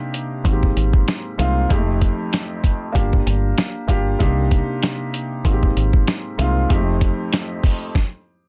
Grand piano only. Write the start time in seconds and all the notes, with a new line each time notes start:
Already playing: C3 A#3 D4 D#4 G4
0.44 G#2 A#3 C4 D#4 F#4
0.53 G4
1.38 G#2 A#3 C4 D#4 F4
1.69 F2 G#3 C4 D#4 G4
1.76 A3
2.92 A#3 D4 F4 G4
3.87 A#3 D4 F4 G4
4.19 C3 A#3 D4 D#4 G4
5.44 G#2 A#3 C4 D#4 F#4
5.53 G4
6.38 G#2 A#3 C4 D#4 F4
6.69 F2 G#3 C4 D#4 G4
6.76 A3